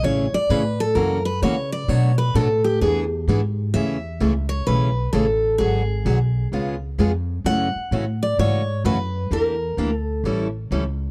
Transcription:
0.03 upright bass A1, steel-string acoustic guitar C#3 E3 A3 C#4 G#4 C#5
0.33 steel-string acoustic guitar D5, muted upright bass stroke
0.50 upright bass A2, steel-string acoustic guitar C#3 E3 A3 C#4 G#4 B4
0.80 steel-string acoustic guitar A4
0.95 upright bass F#2, steel-string acoustic guitar C#3 E3 A#3 C#4 F#4 A#4
1.25 steel-string acoustic guitar B4
1.42 upright bass C#3, steel-string acoustic guitar C#3 E3 A#3 C#4 F#4 C#5
1.72 steel-string acoustic guitar D5
1.88 upright bass B2, steel-string acoustic guitar B2 F#3 A3 D4 F#4 C#5
2.18 steel-string acoustic guitar B4
2.34 upright bass A2, steel-string acoustic guitar B2 F#3 A3 D4 F#4 A4
2.64 steel-string acoustic guitar G4
2.81 upright bass E2, steel-string acoustic guitar E3 B3 D4 G#4
3.28 upright bass G#2, steel-string acoustic guitar E3 B3 D4 G#4
3.74 upright bass E2, steel-string acoustic guitar C#3 E3 A3 C#4 G#4 E5
4.20 upright bass C#2, steel-string acoustic guitar C#3 E3 A3 C#4 G#4
4.49 steel-string acoustic guitar C#5
4.67 upright bass B1, steel-string acoustic guitar C#3 E3 A3 C#4 G#4 B4
5.13 upright bass A1, steel-string acoustic guitar C#3 E3 A3 C#4 G#4 A4
5.58 upright bass G#1, steel-string acoustic guitar D3 F#3 B3 F#4 G#4
6.05 upright bass B1, steel-string acoustic guitar D3 F#3 B3 F#4 G#4
6.52 upright bass C#2, steel-string acoustic guitar C#3 G#3 B3 F4 G#4
6.98 upright bass F2, steel-string acoustic guitar C#3 G#3 B3 F4 G#4
7.44 upright bass F#2, steel-string acoustic guitar C#3 E3 A3 C#4 F#4 F#5
7.75 muted upright bass stroke
7.91 upright bass A2, steel-string acoustic guitar C#3 E3 A3 C#4 F#4
8.23 steel-string acoustic guitar D5
8.38 upright bass G#2, steel-string acoustic guitar C#3 E3 A3 C#4 F#4 C#5
8.84 upright bass F#2, steel-string acoustic guitar C#3 E3 A3 C#4 F#4 B4
9.31 upright bass E2, steel-string acoustic guitar E3 A#3 D4 G4 A#4
9.77 upright bass D2, steel-string acoustic guitar E3 A#3 D4 G4
9.93 steel-string acoustic guitar A4
10.24 upright bass A1, steel-string acoustic guitar E3 G3 C#4 E4 A4
10.71 upright bass C#2, steel-string acoustic guitar E3 G3 C#4 E4 A4

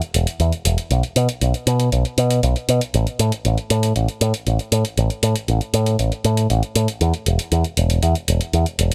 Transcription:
0.02 closed hi-hat
0.14 picked electric bass E1, closed hi-hat
0.27 closed hi-hat
0.40 picked electric bass E2, closed hi-hat
0.52 closed hi-hat
0.65 picked electric bass E1, closed hi-hat
0.78 closed hi-hat
0.91 picked electric bass B1, closed hi-hat
1.03 closed hi-hat
1.16 picked electric bass B2, closed hi-hat
1.29 closed hi-hat
1.41 picked electric bass B1, closed hi-hat
1.54 closed hi-hat
1.67 picked electric bass B2, closed hi-hat
1.80 closed hi-hat
1.92 picked electric bass B1, closed hi-hat
2.05 closed hi-hat
2.18 picked electric bass B2, closed hi-hat
2.31 closed hi-hat
2.43 picked electric bass B1, closed hi-hat
2.56 closed hi-hat
2.69 picked electric bass B2, closed hi-hat
2.81 closed hi-hat
2.94 picked electric bass A1, closed hi-hat
3.07 closed hi-hat
3.19 picked electric bass A2, closed hi-hat
3.32 closed hi-hat
3.45 picked electric bass A1, closed hi-hat
3.58 closed hi-hat
3.70 picked electric bass A2, closed hi-hat
3.83 closed hi-hat
3.96 picked electric bass A1, closed hi-hat
4.08 closed hi-hat
4.21 picked electric bass A2, closed hi-hat
4.34 closed hi-hat
4.47 picked electric bass A1, closed hi-hat
4.59 closed hi-hat
4.72 picked electric bass A2, closed hi-hat
4.85 closed hi-hat
4.97 picked electric bass A1, closed hi-hat
5.10 closed hi-hat
5.23 picked electric bass A2, closed hi-hat
5.36 closed hi-hat
5.48 picked electric bass A1, closed hi-hat
5.61 closed hi-hat
5.74 picked electric bass A2, closed hi-hat
5.86 closed hi-hat
5.99 picked electric bass A1, closed hi-hat
6.12 closed hi-hat
6.25 picked electric bass A2, closed hi-hat
6.37 closed hi-hat
6.50 picked electric bass A1, closed hi-hat
6.63 closed hi-hat
6.75 picked electric bass A2, closed hi-hat
6.88 closed hi-hat
7.01 picked electric bass E2, closed hi-hat
7.14 closed hi-hat
7.26 picked electric bass E1, closed hi-hat
7.39 closed hi-hat
7.52 picked electric bass E2, closed hi-hat
7.64 closed hi-hat
7.77 picked electric bass E1, closed hi-hat
7.90 closed hi-hat
8.03 picked electric bass E2, closed hi-hat
8.15 closed hi-hat
8.28 picked electric bass E1, closed hi-hat
8.41 closed hi-hat
8.53 picked electric bass E2, closed hi-hat
8.66 closed hi-hat
8.79 picked electric bass E1, closed hi-hat

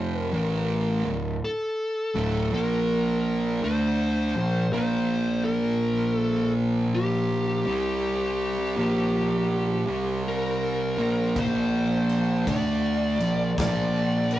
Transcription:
Already playing: picked electric bass F1, distorted electric guitar F2 C3 F3, lead electric guitar C5
0.20 lead electric guitar A#4
0.31 picked electric bass A1, distorted electric guitar A2 E3 A3
1.04 picked electric bass D1, distorted electric guitar D2 A2
1.45 lead electric guitar A4
2.14 picked electric bass D1, distorted electric guitar D2 A2 D3
2.51 picked electric bass A#1, distorted electric guitar A#2 F3 A#3, lead electric guitar A#4
3.62 picked electric bass D2, distorted electric guitar D3 A3 D4, lead electric guitar C5
4.35 picked electric bass A#1, distorted electric guitar A#2 F3
4.72 picked electric bass A#1, distorted electric guitar A#2 F3 A#3, lead electric guitar C5
5.45 lead electric guitar A#4
6.16 lead electric guitar A4
6.95 lead electric guitar G4
7.65 picked electric bass C2, distorted electric guitar C3 G3 C4
8.76 picked electric bass A#1, distorted electric guitar A#2 F3 A#3
9.87 picked electric bass C2, distorted electric guitar C3 G3 C4
10.28 lead electric guitar A#4
10.97 picked electric bass A#1, distorted electric guitar A#2 F3 A#3
11.35 picked electric bass A#1, distorted electric guitar A#2 F3 A#3, kick, crash
11.39 lead electric guitar C5
12.09 crash
12.46 picked electric bass D2, distorted electric guitar D3 A3 D4, lead electric guitar D5, kick, crash
13.19 picked electric bass A#1, distorted electric guitar A#2 F3, crash
13.56 picked electric bass A#1, distorted electric guitar A#2 F3 A#3, kick, snare, crash
13.61 lead electric guitar D5
14.31 lead electric guitar C5, crash

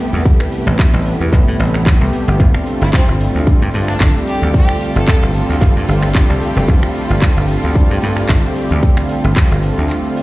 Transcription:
Already playing: analog synth pad C3 G3 A3 B3 G4, violin section A3 G4 B4
0.13 slap bass E2, closed hi-hat, shaker
0.23 analog synth pad C3 G3 A3 B3 E4, kick, closed hi-hat, shaker
0.40 finger snap, closed hi-hat, shaker
0.52 open hi-hat
0.67 slap bass A1, closed hi-hat, shaker
0.79 kick, clap, closed hi-hat, shaker
0.93 slap bass A1, closed hi-hat, shaker
1.05 analog synth pad C3 G3 A3 B3 E4, open hi-hat
1.20 slap bass E2, closed hi-hat, shaker
1.33 slap bass A1, kick, clap, closed hi-hat, shaker
1.47 slap bass A2, closed hi-hat, shaker
1.59 slap bass A1, open hi-hat
1.74 finger snap, closed hi-hat, shaker
1.85 analog synth pad C3 G3 A3 B3 G4, kick, clap, closed hi-hat, shaker
2.01 slap bass C2, closed hi-hat, shaker
2.13 open hi-hat
2.28 slap bass G1, closed hi-hat, shaker
2.38 slap bass G1, analog synth pad D3 G3 A3 C4 F4, violin section G3 F4 A4, kick, closed hi-hat, shaker
2.54 finger snap, closed hi-hat, shaker
2.67 open hi-hat
2.81 slap bass G1, violin section E4, closed hi-hat, shaker
2.93 violin section C4, kick, clap, closed hi-hat, shaker
3.08 slap bass G1, closed hi-hat, shaker
3.19 analog synth pad D3 G3 A3 C4 F4, open hi-hat
3.35 slap bass D2, closed hi-hat, shaker
3.47 kick, closed hi-hat, shaker
3.61 slap bass G2, closed hi-hat, shaker
3.74 slap bass G2, open hi-hat
3.88 violin section D4, finger snap, closed hi-hat, shaker
4.00 slap bass G1, analog synth pad D3 G3 A3 C4 G4, violin section D4, kick, clap, closed hi-hat, shaker
4.15 closed hi-hat, shaker
4.27 violin section G4, open hi-hat
4.42 slap bass D2, closed hi-hat, shaker
4.53 analog synth pad D3 G3 A3 C4 F4, violin section G4, kick, closed hi-hat, shaker
4.69 finger snap, closed hi-hat, shaker
4.81 open hi-hat
4.95 slap bass G1, violin section A4, closed hi-hat, shaker
5.08 kick, clap, closed hi-hat, shaker
5.22 slap bass G1, closed hi-hat, shaker
5.33 analog synth pad D3 G3 A3 C4 F4, open hi-hat
5.49 slap bass D2, closed hi-hat, shaker
5.61 slap bass G1, kick, clap, closed hi-hat, shaker
5.76 slap bass G2, closed hi-hat, shaker
5.88 slap bass G1, open hi-hat
6.03 finger snap, closed hi-hat, shaker
6.14 analog synth pad D3 G3 A3 C4 G4, kick, clap, closed hi-hat, shaker
6.29 slap bass C2, closed hi-hat, shaker
6.41 muted slap bass stroke, open hi-hat
6.56 slap bass F1, closed hi-hat, shaker
6.67 slap bass G1, analog synth pad D3 G3 A3 C4 F4, kick, closed hi-hat, shaker
6.82 finger snap, closed hi-hat, shaker
6.95 open hi-hat
7.09 slap bass G1, closed hi-hat, shaker
7.22 kick, clap, closed hi-hat, shaker
7.36 slap bass G1, closed hi-hat, shaker
7.47 analog synth pad D3 G3 A3 C4 F4, open hi-hat
7.63 slap bass D2, closed hi-hat, shaker
7.75 kick, closed hi-hat, shaker
7.90 slap bass G2, closed hi-hat, shaker
8.02 slap bass G2, open hi-hat
8.17 finger snap, closed hi-hat, shaker
8.28 slap bass G1, analog synth pad D3 G3 A3 C4 G4, kick, clap, closed hi-hat, shaker
8.43 closed hi-hat, shaker
8.56 open hi-hat
8.70 slap bass D2, closed hi-hat, shaker
8.81 analog synth pad D3 G3 A3 C4 F4, kick, closed hi-hat, shaker
8.97 finger snap, closed hi-hat, shaker
9.09 open hi-hat
9.24 slap bass G1, closed hi-hat, shaker
9.36 kick, clap, closed hi-hat, shaker
9.51 slap bass G1, closed hi-hat, shaker
9.62 analog synth pad D3 G3 A3 C4 F4, open hi-hat
9.78 slap bass D2, closed hi-hat, shaker
9.90 clap, closed hi-hat, shaker
10.04 closed hi-hat, shaker
10.17 open hi-hat

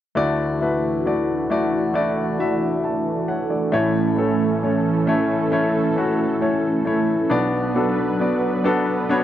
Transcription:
0.15 grand piano D2 D3 A3 E4 F#4 D5, analog synth pad E3 A3 D4 F#4
0.61 grand piano A3 E4 F#4 B4
1.06 grand piano A3 E4 F#4 D5
1.50 grand piano A3 E4 F#4 D5
1.94 grand piano A3 E4 F#4 D5
2.38 grand piano A3 E4 F#4 E5
2.84 grand piano E5 A5
3.28 grand piano C#5 F#5
3.50 grand piano A4 D5
3.72 grand piano A1 A2 A3 C#4 E4 C#5, analog synth pad C#4 A4
4.16 grand piano A3 C#4 E4 A4
4.63 grand piano A3 C#4 E4 C#5
5.07 grand piano A3 C#4 E4 C#5
5.52 grand piano A3 C#4 E4 C#5
5.96 grand piano A3 C#4 E4 F#4
6.41 grand piano A3 C#4 E4 C#5
6.85 grand piano A3 C#4 E4 C#5
7.30 grand piano B1 B2 B3 D4 F#4 D5, analog synth pad D4 B4
7.34 analog synth pad F#3 B3
7.74 grand piano B3 D4 F#4 A4
8.19 grand piano B3 D4 F#4 D5
8.64 grand piano B3 D4 F#4 A4
9.09 grand piano B3 D4 F#4 C#5

